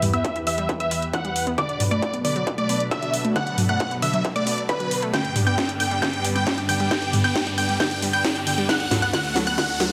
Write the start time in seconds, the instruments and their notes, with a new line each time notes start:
Already playing: analog synth pad E2 E3 B3 G4 B4, riser
0.02 synth arpeggio sound G3, open hi-hat, mid tom
0.13 synth arpeggio sound B3, supersaw synth E5, synth pluck E6, closed hi-hat
0.25 kick, closed hi-hat
0.36 synth arpeggio sound E4, closed hi-hat
0.47 synth arpeggio sound E3, supersaw synth E5, synth pluck E6, open hi-hat
0.58 synth arpeggio sound G3, closed hi-hat
0.69 kick, closed hi-hat
0.80 synth arpeggio sound B3, supersaw synth E5, synth pluck E6, closed hi-hat
0.91 synth arpeggio sound E4, open hi-hat
1.02 closed hi-hat
1.13 synth arpeggio sound E3, supersaw synth F#5, synth pluck F#6, kick, closed hi-hat
1.25 synth arpeggio sound G3, closed hi-hat
1.36 open hi-hat
1.47 synth arpeggio sound B3, closed hi-hat
1.58 analog synth pad B2 F#3 D4 A4, synth arpeggio sound D3, supersaw synth D5, synth pluck D6, kick, closed hi-hat
1.69 closed hi-hat
1.80 synth arpeggio sound F#3, open hi-hat, mid tom
1.91 synth arpeggio sound A3, supersaw synth D5, synth pluck D6, closed hi-hat
2.02 kick, closed hi-hat
2.14 synth arpeggio sound B3, closed hi-hat
2.25 synth arpeggio sound D3, supersaw synth D5, synth pluck D6, open hi-hat
2.36 synth arpeggio sound F#3, closed hi-hat
2.47 kick, closed hi-hat
2.58 synth arpeggio sound A3, supersaw synth D5, synth pluck D6, closed hi-hat
2.69 synth arpeggio sound B3, open hi-hat
2.80 closed hi-hat
2.91 synth arpeggio sound D3, supersaw synth E5, synth pluck E6, kick, closed hi-hat
3.03 synth arpeggio sound F#3, closed hi-hat
3.14 open hi-hat
3.25 synth arpeggio sound A3, closed hi-hat
3.36 synth arpeggio sound D3, supersaw synth F#5, synth pluck F#6, kick, closed hi-hat
3.47 closed hi-hat
3.58 synth arpeggio sound F#3, open hi-hat, mid tom
3.69 synth arpeggio sound A3, supersaw synth F#5, synth pluck F#6
3.80 kick, closed hi-hat
3.91 synth arpeggio sound B3, closed hi-hat
4.02 synth arpeggio sound D3, supersaw synth E5, synth pluck E6, open hi-hat
4.14 synth arpeggio sound F#3, closed hi-hat
4.25 kick, closed hi-hat
4.36 synth arpeggio sound A3, supersaw synth D5, synth pluck D6, closed hi-hat
4.47 synth arpeggio sound B3, open hi-hat
4.58 closed hi-hat
4.69 synth arpeggio sound D3, supersaw synth B4, synth pluck B5, kick, closed hi-hat
4.80 synth arpeggio sound F#3, closed hi-hat
4.91 open hi-hat
5.02 synth arpeggio sound A3, closed hi-hat
5.13 analog synth pad G2 D3 B3 G4 D5, synth arpeggio sound D3, supersaw synth G5, synth pluck G6, kick, snare, closed hi-hat
5.25 closed hi-hat
5.36 synth arpeggio sound G3, open hi-hat, mid tom
5.47 synth arpeggio sound B3, supersaw synth G5, synth pluck G6, closed hi-hat
5.58 kick, snare, closed hi-hat
5.69 synth arpeggio sound D4, closed hi-hat
5.80 synth arpeggio sound D3, supersaw synth G5, synth pluck G6, open hi-hat
5.91 synth arpeggio sound G3, closed hi-hat
6.02 synth arpeggio sound D3, supersaw synth G5, synth pluck G6, kick, snare, closed hi-hat
6.13 closed hi-hat
6.25 synth arpeggio sound G3, open hi-hat
6.36 synth arpeggio sound B3, supersaw synth G5, synth pluck G6, closed hi-hat
6.47 kick, snare, closed hi-hat
6.58 synth arpeggio sound D4, closed hi-hat
6.69 synth arpeggio sound D3, supersaw synth G5, synth pluck G6, open hi-hat
6.80 synth arpeggio sound G3, closed hi-hat
6.91 synth arpeggio sound D3, supersaw synth G5, synth pluck G6, kick, snare, closed hi-hat
7.02 closed hi-hat
7.13 synth arpeggio sound G3, open hi-hat, mid tom
7.24 synth arpeggio sound B3, supersaw synth G5, synth pluck G6, closed hi-hat
7.36 kick, snare, closed hi-hat
7.47 synth arpeggio sound D4, closed hi-hat
7.58 synth arpeggio sound D3, supersaw synth G5, synth pluck G6, open hi-hat
7.69 synth arpeggio sound G3, closed hi-hat
7.80 synth arpeggio sound D3, supersaw synth G5, synth pluck G6, kick, snare, closed hi-hat
7.91 closed hi-hat
8.02 synth arpeggio sound G3, open hi-hat
8.13 synth arpeggio sound B3, supersaw synth G5, synth pluck G6, closed hi-hat
8.25 kick, snare, closed hi-hat
8.36 synth arpeggio sound D4, closed hi-hat
8.47 synth arpeggio sound D3, supersaw synth G5, synth pluck G6, open hi-hat
8.58 synth arpeggio sound G3, closed hi-hat
8.69 analog synth pad D2 A3 F#4 A4, synth arpeggio sound D3, supersaw synth F#5, synth pluck F#6, kick, snare, closed hi-hat
8.80 closed hi-hat
8.91 synth arpeggio sound F#3, snare, open hi-hat, mid tom
9.02 synth arpeggio sound B3, supersaw synth F#5, synth pluck F#6, closed hi-hat
9.13 synth arpeggio sound D3, supersaw synth F#5, synth pluck F#6, kick, snare, closed hi-hat
9.25 closed hi-hat
9.36 synth arpeggio sound F#3, snare, open hi-hat
9.47 synth arpeggio sound B3, supersaw synth F#5, synth pluck F#6, closed hi-hat
9.58 synth arpeggio sound D3, supersaw synth F#5, synth pluck F#6, kick, snare, closed hi-hat
9.69 closed hi-hat
9.80 synth arpeggio sound F#3, snare, open hi-hat